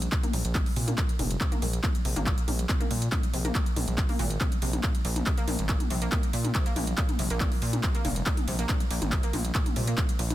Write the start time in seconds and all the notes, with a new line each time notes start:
0.02 closed hi-hat, ride
0.12 C3, kick, clap, closed hi-hat, ride
0.23 A#3, closed hi-hat, mid tom, ride
0.33 A#1 A#2, open hi-hat, ride
0.45 A#1, closed hi-hat, ride
0.55 A#2, kick, clap, closed hi-hat, mid tom, ride
0.66 open hi-hat, ride
0.76 A#2 C3, open hi-hat, ride
0.88 A#3, closed hi-hat, mid tom, ride
0.98 A#2, kick, clap, closed hi-hat, ride
1.09 closed hi-hat, ride
1.19 F1 A#2, open hi-hat, mid tom, ride
1.31 closed hi-hat, ride
1.41 C3, kick, clap, closed hi-hat, ride
1.52 A#3, closed hi-hat, mid tom, ride
1.62 A#1 A#2, open hi-hat, ride
1.73 closed hi-hat, ride
1.83 A#2, kick, clap, closed hi-hat, mid tom, ride
1.95 closed hi-hat, ride
2.05 A#1 C3, open hi-hat, ride
2.16 G#1 A#3, closed hi-hat, mid tom, ride
2.26 A#2, kick, clap, closed hi-hat, ride
2.38 closed hi-hat, ride
2.48 A#1 A#2, open hi-hat, mid tom, ride
2.59 closed hi-hat, ride
2.69 C3, kick, clap, closed hi-hat, ride
2.80 A#3, closed hi-hat, mid tom, ride
2.91 A#2, open hi-hat, ride
3.02 closed hi-hat, ride
3.12 A#2, kick, clap, closed hi-hat, mid tom, ride
3.23 closed hi-hat, ride
3.34 A#1 C3, open hi-hat, ride
3.45 A#3, closed hi-hat, mid tom, ride
3.55 A#2, kick, clap, closed hi-hat, ride
3.66 closed hi-hat, ride
3.76 A#1 A#2, open hi-hat, mid tom, ride
3.88 A#1, closed hi-hat, ride
3.98 C3, kick, clap, closed hi-hat, ride
4.09 A#3, open hi-hat, mid tom, ride
4.19 G#1 A#2, open hi-hat, ride
4.30 closed hi-hat, ride
4.41 C3, kick, clap, closed hi-hat, mid tom, ride
4.52 closed hi-hat, ride
4.62 A#1 C3, open hi-hat, ride
4.73 closed hi-hat, mid tom, ride
4.83 A#2, kick, clap, closed hi-hat, mid tom, ride
4.95 closed hi-hat, ride
5.05 A#1 A#2, open hi-hat, ride
5.16 closed hi-hat, mid tom, ride
5.26 C3, kick, clap, closed hi-hat, ride
5.38 A#3, closed hi-hat, ride
5.48 A#1 A#2, open hi-hat, mid tom, ride
5.59 G#1, closed hi-hat, ride
5.69 A#2, kick, clap, closed hi-hat, ride
5.80 closed hi-hat, mid tom, ride
5.90 A#1 C3, open hi-hat, ride
6.02 A#3, closed hi-hat, ride
6.12 A#2, kick, clap, closed hi-hat, mid tom, ride
6.23 closed hi-hat, ride
6.33 A#2, open hi-hat, ride
6.45 closed hi-hat, mid tom, ride
6.55 C3, kick, clap, closed hi-hat, ride
6.66 A#3, closed hi-hat, ride
6.76 A#1 A#2, open hi-hat, mid tom, ride
6.87 closed hi-hat, ride
6.98 A#2, kick, clap, closed hi-hat, ride
7.09 closed hi-hat, mid tom, ride
7.19 A#1 C3, open hi-hat, ride
7.30 A#1 A#3, closed hi-hat, ride
7.40 A#2, kick, clap, closed hi-hat, mid tom, ride
7.52 open hi-hat, ride
7.62 A#2, open hi-hat, ride
7.73 closed hi-hat, mid tom, ride
7.83 C3, kick, clap, closed hi-hat, ride
7.95 A#3, closed hi-hat, ride
8.05 F1 A#2, open hi-hat, mid tom, ride
8.16 closed hi-hat, ride
8.26 A#2, kick, clap, closed hi-hat, ride
8.37 closed hi-hat, mid tom, ride
8.48 A#1 C3, open hi-hat, ride
8.59 A#3, closed hi-hat, ride
8.69 A#2, kick, clap, closed hi-hat, mid tom, ride
8.80 closed hi-hat, ride
8.91 A#1 A#2, open hi-hat, ride
9.02 G#1, closed hi-hat, mid tom, ride
9.12 C3, kick, clap, closed hi-hat, ride
9.23 A#3, closed hi-hat, ride
9.33 A#1 A#2, open hi-hat, mid tom, ride
9.45 closed hi-hat, ride
9.55 A#2, kick, clap, closed hi-hat, ride
9.66 closed hi-hat, mid tom, ride
9.76 A#2 C3, open hi-hat, ride
9.87 A#3, closed hi-hat, ride
9.98 A#2, kick, clap, closed hi-hat, mid tom, ride
10.09 closed hi-hat, ride
10.19 A#1 A#2, open hi-hat, ride
10.30 closed hi-hat, mid tom, ride